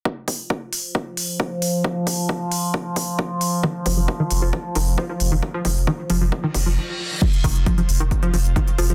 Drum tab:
CC |----------------|----------------|----------------|----------------|
HH |--o---o---o---o-|--o---o---o---o-|--o---o---o---o-|--o---o---o-----|
BD |o-o-o---o---o---|o-o-o---o-o-o---|o-o-o---o---o---|o-o-o---o-o-----|

CC |x---------------|
HH |xxoxxxoxxxoxxxox|
BD |o-o-o---o---o---|